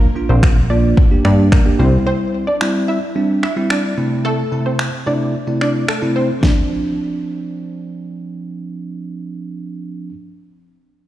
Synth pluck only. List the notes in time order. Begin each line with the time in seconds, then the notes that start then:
0.29 C4 C5
0.70 D4 D5
1.25 D4 D5
1.52 A#3 A#4
1.79 C4 C5
2.07 C4 C5
2.47 D4 D5
2.88 E4 E5
3.43 E4 E5
3.70 D4 D5
4.25 A3 A4
4.66 C4 C5
5.07 D4 D5
5.61 D4 D5
5.88 A3 A4
6.16 C4 C5
6.43 D4